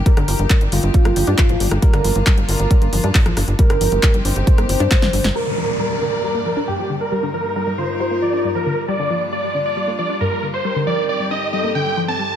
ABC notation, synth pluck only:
X:1
M:4/4
L:1/16
Q:1/4=136
K:Gm
V:1 name="Synth pluck" clef=bass
G, D, F, z G, G, D, z G, B, F, D G,, F, D, z | G, D, F, z G, G, D, z G, B, F, D G,, F, D, z | G, D, F, z G, G, D, z G, B, F, D G,, F, D, z | G, D, F, z G, G, D, z G, B, F, D G,, F, D, z |
G, D, F, z G, G, D, z G, B, F, D G,, F, D, z | G, D, F, z G, G, D, z G, B, F, D G,, F, D, z | G, D, F, z G, G, D, z G, B, D, G, F, C G, z |]